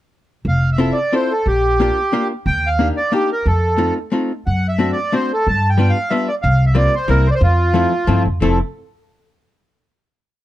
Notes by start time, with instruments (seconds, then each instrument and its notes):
0.45 upright bass F1, accordion F5
0.72 accordion E5
0.78 hollow-body jazz guitar C4 E4 F4 A4
0.93 accordion D5
1.12 hollow-body jazz guitar C4 E4 F4 A4, accordion C5
1.32 accordion A4
1.46 upright bass A#1, accordion G4
1.80 hollow-body jazz guitar A#3 D4 F4 G4
2.12 hollow-body jazz guitar A#3 D4 F4 G4
2.46 upright bass D#2, accordion G5
2.67 accordion F5
2.79 hollow-body jazz guitar A#3 D4 D#4 G4
2.97 accordion D5
3.12 hollow-body jazz guitar A#3 D4 D#4 G4, accordion G4
3.32 accordion A#4
3.46 upright bass F2, accordion A4
3.77 hollow-body jazz guitar A3 C4 D#4 F4
4.12 hollow-body jazz guitar A3 C4 D#4 F4
4.46 upright bass F#2, accordion F#5
4.68 accordion E5
4.78 hollow-body jazz guitar A3 C4 D4 F#4
4.92 accordion D5
5.12 hollow-body jazz guitar A3 C4 D4 F#4, accordion C5
5.33 accordion A4
5.47 upright bass G2, accordion A5
5.70 accordion G5
5.78 hollow-body jazz guitar G3 B3 D4 F4
5.90 accordion F5
6.10 hollow-body jazz guitar G3 B3 D4 F4, accordion E5
6.28 accordion D5
6.42 upright bass C2, accordion F5
6.66 accordion E5
6.75 hollow-body jazz guitar G3 A#3 C4 F4, accordion D5
6.95 accordion C5
7.08 upright bass C2, hollow-body jazz guitar G3 A#3 C4 E4, accordion A#4
7.27 accordion C5
7.31 accordion C5 D5
7.41 upright bass F2, accordion F4
7.74 hollow-body jazz guitar F3 A3 C4 E4
8.07 upright bass G2, hollow-body jazz guitar F3 A3 C4 E4
8.25 upright bass F2
8.41 upright bass F1, hollow-body jazz guitar F3 A3 C4 E4, accordion A4